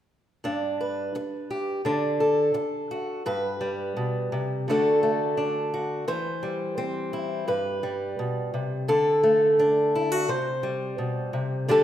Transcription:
0.44 G2 D4
0.81 B4
1.15 muted steel-string acoustic guitar stroke
1.50 G4
1.85 D3 D4
2.20 A4
2.54 muted steel-string acoustic guitar stroke
2.91 F#4
3.26 G2 B4
3.61 G3
3.96 B2
4.32 C3
4.68 D3 A3 D4 F#4 A4
5.03 A3
5.37 D4
5.74 F#4
6.08 E3 C5
6.43 G3
6.78 C4
7.13 E4
7.48 G2 B4
7.83 G3
8.19 B2
8.54 C3
8.88 D3 A4
9.23 A3
9.59 D4
9.95 E4
10.12 F#4
10.28 C3 C5
10.63 G3
10.98 B2
11.33 C3
11.68 D3 G3 D4 G4 A4

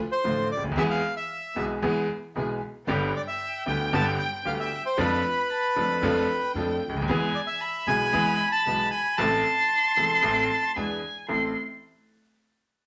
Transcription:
0.12 C5
0.24 A1 A2 D3 F3 A3 D4 F4
0.52 D5
0.57 C#2
0.63 D2
0.70 D#2
0.76 E2 E3 G#3 B3 E4 G#4 E5
0.90 F5
1.17 E5
1.55 B1 B2 E3 G#3 B3 E4 G#4
1.82 E2 E3 G#3 B3 E4 G#4
2.35 B1 B2 E3 G#3 B3 E4 G#4
2.87 G1 G2 D3 G3 B3 D4 G4 G5
3.16 D5
3.28 E5
3.66 D2 D3 G3 B3 D4 G4 G5
3.92 G1 G2 D3 G3 B3 D4 G4 A5
4.19 G5
4.45 D2 D3 G3 B3 D4 G4 F5
4.60 E5
4.86 C5
4.97 F2 F3 A3 D4 F4 A4 B4 B5
5.50 A5
5.76 F2 F3 A3 D4 F4 A4
6.01 F2 F3 A3 D4 F4 A4 G5
6.54 F2 F3 A3 D4 F4 A4
6.88 C#2
6.94 D2
7.00 D#2
7.07 E2 E3 G#3 B3 E4 G#4 G#5
7.35 D5
7.47 E5
7.61 B5
7.87 B1 B2 E3 G#3 B3 E4 G#4 G#5
8.12 E2 E3 G#3 B3 E4 G#4
8.52 A5
8.65 B1 B2 E3 G#3 B3 E4 G#4
8.91 G#5
9.17 A1 A2 E3 A3 C4 E4 A4 A5 C6
9.97 E1 E2 E3 A3 C4 E4 A4
10.22 A1 A2 E3 A3 C4 E4 A4
10.76 E2 E3 G#3 B3 D4 E4 G#4 G#5
11.28 A1 A3 C4 E4 A4 C6

